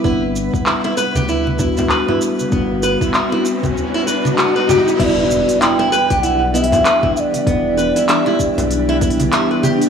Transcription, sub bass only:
X:1
M:4/4
L:1/16
Q:"Swing 16ths" 1/4=97
K:Em
V:1 name="Sub bass" clef=bass
G,,,3 z4 D,,4- D,, z4 | G,,,3 z4 D,, z8 | E,,,3 z4 B,,,4- B,,, z4 | E,,,3 z4 B,,,4- B,,, z4 |]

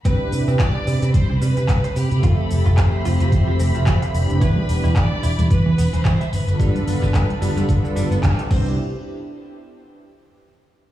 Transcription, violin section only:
X:1
M:4/4
L:1/16
Q:"Swing 16ths" 1/4=110
K:C
V:1 name="Violin section"
B4 d4 c2 B4 G2 | A4 c8- c2 z2 | B4 d4 B3 c3 B2- | B12 z2 c2 |
z16 |]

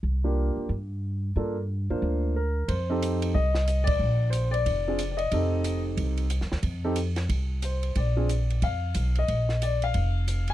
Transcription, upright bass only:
X:1
M:4/4
L:1/8
Q:"Swing" 1/4=182
K:Fmix
V:1 name="Upright bass" clef=bass
C,,3 z G,,4 | G,,3 z D,,4 | F,,4 C,,4 | B,,,4 F,,,4 |
F,,,4 C,,2- (3C,, F,, E,, | F,,4 C,,4 | B,,,4 F,,2 =B,,,2 | B,,,4 F,,,4 |]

